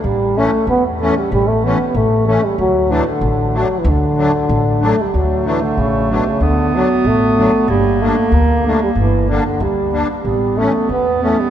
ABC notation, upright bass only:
X:1
M:2/4
L:1/8
Q:1/4=94
K:D
V:1 name="Upright bass" clef=bass
A,,,2 E,,2 | A,,,2 A,,,2 | D,,2 A,,,2 | D,,2 A,,,2 |
D,,2 A,,,2 | D,,2 A,,,2 | G,,,2 D,,2 | G,,,2 D,,2 |
A,,,2 E,,2 |]